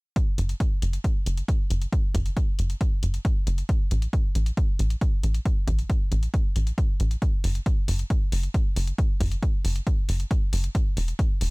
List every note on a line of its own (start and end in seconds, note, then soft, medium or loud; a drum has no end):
0.16 kick loud
0.16 closed hi-hat medium
0.38 0.54 F#1 loud
0.38 closed hi-hat medium
0.49 closed hi-hat medium
0.60 kick loud
0.60 closed hi-hat medium
0.82 0.98 F#1 medium
0.82 closed hi-hat medium
0.93 closed hi-hat medium
1.04 kick loud
1.04 closed hi-hat medium
1.26 1.42 F#1 medium
1.26 closed hi-hat medium
1.37 closed hi-hat medium
1.48 kick loud
1.48 closed hi-hat medium
1.70 1.86 F#1 medium
1.70 closed hi-hat medium
1.82 closed hi-hat medium
1.93 kick loud
1.93 closed hi-hat medium
2.15 2.30 F#1 loud
2.15 kick medium
2.15 closed hi-hat medium
2.26 closed hi-hat medium
2.37 kick loud
2.37 closed hi-hat medium
2.59 2.75 F#1 medium
2.59 closed hi-hat medium
2.70 closed hi-hat medium
2.81 kick loud
2.81 closed hi-hat medium
3.03 3.19 F#1 medium
3.03 closed hi-hat medium
3.14 closed hi-hat medium
3.25 kick loud
3.25 closed hi-hat medium
3.47 3.63 F#1 medium
3.47 closed hi-hat medium
3.58 closed hi-hat medium
3.69 kick loud
3.69 closed hi-hat medium
3.91 4.07 A1 loud
3.91 closed hi-hat medium
4.02 closed hi-hat medium
4.13 kick loud
4.13 closed hi-hat medium
4.35 4.51 A1 medium
4.35 closed hi-hat medium
4.46 closed hi-hat medium
4.57 kick loud
4.57 closed hi-hat medium
4.79 4.95 A1 medium
4.79 closed hi-hat medium
4.90 closed hi-hat medium
5.01 kick loud
5.01 closed hi-hat medium
5.23 5.39 A1 medium
5.23 closed hi-hat medium
5.34 closed hi-hat medium
5.45 kick loud
5.45 closed hi-hat medium
5.68 5.83 A1 loud
5.68 kick medium
5.68 closed hi-hat medium
5.79 closed hi-hat medium
5.90 kick loud
5.90 closed hi-hat medium
6.12 6.27 A1 medium
6.12 closed hi-hat medium
6.23 closed hi-hat medium
6.34 kick loud
6.34 closed hi-hat medium
6.56 6.72 A1 medium
6.56 closed hi-hat medium
6.67 closed hi-hat medium
6.78 kick loud
6.78 closed hi-hat medium
7.00 7.16 A1 loud
7.00 closed hi-hat medium
7.11 closed hi-hat medium
7.22 kick loud
7.22 closed hi-hat medium
7.44 7.60 F#1 loud
7.44 open hi-hat loud
7.55 closed hi-hat medium
7.66 kick loud
7.66 closed hi-hat medium
7.88 8.04 F#1 medium
7.88 open hi-hat loud
7.99 closed hi-hat medium
8.10 kick loud
8.10 closed hi-hat medium
8.32 8.48 F#1 medium
8.32 open hi-hat loud
8.43 closed hi-hat medium
8.54 kick loud
8.54 closed hi-hat medium
8.76 8.92 F#1 medium
8.76 open hi-hat loud
8.87 closed hi-hat medium
8.98 kick loud
8.98 closed hi-hat medium
9.20 9.36 F#1 loud
9.20 kick medium
9.20 open hi-hat medium
9.32 closed hi-hat medium
9.43 kick loud
9.43 closed hi-hat medium
9.65 9.80 F#1 medium
9.65 open hi-hat medium
9.76 closed hi-hat medium
9.87 kick loud
9.87 closed hi-hat medium
10.09 10.24 F#1 medium
10.09 open hi-hat loud
10.20 closed hi-hat medium
10.31 kick loud
10.31 closed hi-hat medium
10.53 10.69 F#1 medium
10.53 open hi-hat loud
10.64 closed hi-hat medium
10.75 kick loud
10.75 closed hi-hat medium
10.97 11.13 E1 medium
10.97 open hi-hat medium
11.08 closed hi-hat medium
11.19 kick loud
11.19 closed hi-hat medium
11.41 11.50 E1 medium
11.41 open hi-hat medium